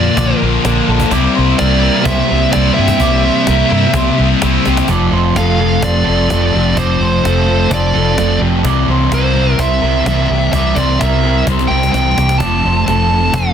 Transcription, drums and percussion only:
0.17 cajon bass loud
0.65 cajon slap loud
1.00 cajon bass medium
1.00 cajon slap soft
1.11 cajon bass medium
1.59 cajon slap loud
2.05 cajon bass loud
2.53 cajon slap loud
2.88 cajon bass medium
3.00 cajon bass medium
3.47 cajon slap loud
3.94 cajon bass loud
4.42 cajon slap loud
4.65 cajon slap medium
4.77 cajon slap medium
4.88 cajon bass medium
5.36 cajon slap loud
5.83 cajon bass loud
6.30 cajon slap loud
6.77 cajon bass loud
7.25 cajon slap loud
7.71 cajon bass loud
8.18 cajon slap loud
8.65 cajon bass loud
9.12 cajon slap loud
9.59 cajon bass loud
10.06 cajon slap loud
10.53 cajon bass loud
10.76 cajon bass medium
11.01 cajon slap loud
11.47 cajon bass loud
11.47 cajon slap medium
11.59 cajon slap medium
11.83 cajon slap medium
11.94 cajon slap medium
12.18 cajon slap loud
12.29 cajon slap medium
12.40 cajon bass loud
12.88 cajon slap loud
13.34 cajon bass loud

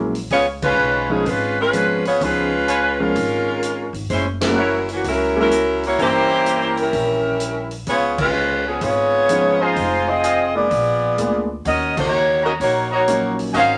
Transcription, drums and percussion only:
0.15 open hi-hat soft
0.30 kick soft
0.30 open hi-hat soft
0.62 kick medium
0.62 crash medium
1.26 kick soft
1.26 open hi-hat soft
1.73 closed hi-hat medium
2.05 open hi-hat soft
2.21 kick soft
2.21 open hi-hat soft
2.68 closed hi-hat soft
3.15 kick soft
3.15 open hi-hat soft
3.63 closed hi-hat medium
3.94 open hi-hat soft
4.10 kick soft
4.10 open hi-hat soft
4.41 snare medium
4.41 ride medium
4.89 open hi-hat soft
5.04 kick soft
5.04 open hi-hat soft
5.51 closed hi-hat medium
5.83 open hi-hat soft
5.99 kick soft
5.99 open hi-hat soft
6.46 closed hi-hat medium
6.77 open hi-hat soft
6.93 kick soft
6.93 open hi-hat soft
7.40 closed hi-hat medium
7.71 open hi-hat soft
7.87 kick soft
7.87 open hi-hat soft
8.18 kick medium
8.18 crash medium
8.81 kick soft
8.81 open hi-hat soft
9.29 closed hi-hat medium
9.76 kick soft
9.76 open hi-hat soft
10.24 closed hi-hat medium
10.71 kick soft
10.71 open hi-hat soft
11.18 closed hi-hat medium
11.65 kick soft
11.65 open hi-hat soft
11.97 kick medium
11.97 crash medium
12.60 kick soft
12.60 open hi-hat soft
13.08 closed hi-hat medium
13.39 open hi-hat soft
13.54 kick soft
13.54 open hi-hat soft

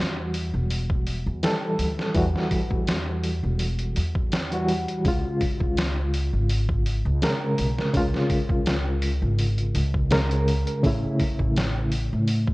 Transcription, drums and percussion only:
0.34 open hi-hat medium
0.70 open hi-hat medium
0.90 kick medium
1.07 open hi-hat medium
1.43 snare loud
1.43 open hi-hat medium
1.79 open hi-hat medium
1.99 snare medium
2.15 kick loud
2.15 open hi-hat medium
2.36 snare soft
2.51 kick medium
2.51 open hi-hat medium
2.71 kick medium
2.87 snare loud
2.87 open hi-hat medium
3.24 open hi-hat medium
3.59 open hi-hat medium
3.79 closed hi-hat soft
3.96 open hi-hat medium
4.15 kick medium
4.32 snare loud
4.32 open hi-hat medium
4.52 closed hi-hat soft
4.68 open hi-hat medium
4.88 closed hi-hat soft
5.05 kick loud
5.05 open hi-hat medium
5.41 kick medium
5.41 open hi-hat medium
5.60 kick medium
5.77 snare loud
5.77 open hi-hat medium
6.14 open hi-hat medium
6.49 open hi-hat medium
6.69 kick medium
6.86 open hi-hat medium
7.22 snare loud
7.22 open hi-hat medium
7.58 open hi-hat medium
7.78 snare soft
7.94 kick loud
7.94 open hi-hat medium
8.14 snare soft
8.30 kick medium
8.30 open hi-hat medium
8.50 kick medium
8.66 snare loud
8.66 open hi-hat medium
9.02 open hi-hat medium
9.39 open hi-hat medium
9.58 closed hi-hat soft
9.75 open hi-hat medium
9.94 kick medium
10.11 snare loud
10.11 open hi-hat medium
10.31 closed hi-hat soft
10.48 open hi-hat medium
10.67 closed hi-hat soft
10.84 kick loud
10.84 open hi-hat medium
11.20 kick medium
11.20 open hi-hat medium
11.39 kick medium
11.56 snare loud
11.56 open hi-hat medium
11.92 open hi-hat medium
12.28 open hi-hat medium
12.47 kick medium

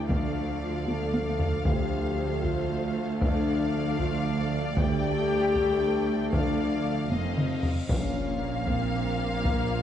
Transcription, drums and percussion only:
0.10 taiko medium
0.88 taiko high medium
1.14 taiko high medium
1.39 taiko low medium
1.65 taiko loud
2.44 taiko medium
3.21 taiko loud
3.99 taiko medium
4.77 taiko loud
5.55 taiko medium
6.33 taiko loud
7.11 taiko high medium
7.38 taiko mid medium
7.63 taiko low medium
7.89 taiko loud
8.67 taiko medium
9.45 taiko loud

